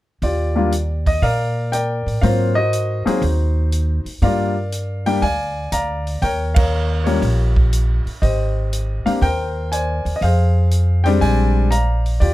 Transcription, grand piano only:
0.23 0.56 F4 medium
0.23 1.19 G4 medium
0.23 1.10 D5 medium
0.55 0.70 G3 medium
0.55 0.70 A#3 medium
0.55 0.71 D4 medium
0.55 0.71 F4 medium
1.07 1.23 D#5 medium
1.22 1.72 A#4 medium
1.22 1.72 D5 medium
1.22 1.69 F5 medium
1.72 2.19 A#4 medium
1.72 2.20 D5 medium
1.72 2.24 G5 medium
2.21 2.53 F#3 medium
2.21 2.53 A#3 medium
2.21 2.54 C4 medium
2.21 2.54 F4 medium
2.21 3.19 A#4 medium
2.21 2.56 C5 medium
2.21 2.54 F5 medium
2.55 3.07 F#4 medium
2.55 3.05 C5 medium
2.55 3.02 D#5 loud
3.05 3.20 F#3 medium
3.05 3.21 A#3 medium
3.05 3.21 C4 medium
3.05 4.04 D#4 medium
3.05 4.04 F#4 medium
3.05 3.21 G#4 medium
3.05 4.03 C5 medium
4.22 4.53 G3 medium
4.22 4.53 A#3 medium
4.22 4.53 D4 medium
4.22 4.54 F4 medium
4.22 5.19 A#4 medium
4.22 5.19 D5 medium
4.22 5.03 F5 medium
5.06 5.21 G3 medium
5.06 5.21 A#3 medium
5.06 5.21 D4 medium
5.06 5.21 G4 medium
5.06 5.21 G5 medium
5.22 5.72 D5 medium
5.22 5.72 F5 medium
5.22 5.74 G#5 loud
5.72 6.19 D5 medium
5.72 6.19 F5 medium
5.72 6.24 A#5 medium
6.22 6.56 A#4 medium
6.22 6.55 C#5 medium
6.22 6.54 G5 medium
6.54 7.53 A#4 medium
6.54 7.03 C#5 medium
6.54 7.02 F5 medium
7.04 7.21 G3 medium
7.04 7.21 A#3 medium
7.04 7.21 C#4 medium
7.04 8.02 F4 soft
7.04 8.02 G4 medium
7.04 8.01 C#5 medium
8.22 9.06 G4 medium
8.22 9.18 C5 medium
8.22 9.08 D#5 medium
9.06 9.20 A#3 medium
9.06 9.20 C4 medium
9.06 9.21 D4 medium
9.06 9.21 G4 medium
9.06 9.11 F5 medium
9.22 10.18 A#4 medium
9.22 9.71 C5 medium
9.22 9.69 G5 medium
9.72 10.19 C5 medium
9.72 10.19 D5 medium
9.72 10.14 G#5 medium
10.16 10.21 D#5 medium
10.22 11.19 G#4 medium
10.22 11.19 C5 medium
10.22 11.02 F5 medium
11.04 11.69 G3 medium
11.04 11.68 G#3 medium
11.04 11.68 C4 medium
11.04 11.68 D4 medium
11.04 11.09 G5 medium
11.21 12.18 C5 medium
11.21 11.71 D5 medium
11.21 11.68 G#5 loud
11.71 12.18 D5 medium
11.71 12.18 F5 medium
11.71 12.22 A#5 medium
12.20 12.34 F4 medium
12.20 12.34 G4 medium
12.20 12.34 D5 medium

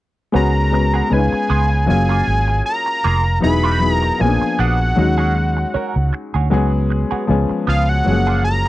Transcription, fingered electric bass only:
0.35 1.01 C#2 medium
1.11 1.29 C#2 medium
1.50 1.90 C#2 medium
1.89 2.22 F#1 medium
2.28 2.60 G#1 medium
3.05 3.38 F1 medium
3.44 4.10 E1 medium
4.21 4.39 A#1 medium
4.59 4.92 A#1 medium
4.98 5.64 D#2 medium
5.75 muted fingered electric bass stroke soft
5.96 6.11 C#2 medium
6.35 6.50 D2 medium
6.52 7.03 C#2 medium
7.12 muted fingered electric bass stroke soft
7.29 7.47 C#2 medium
7.68 8.01 C#2 medium
8.06 8.68 F#1 medium

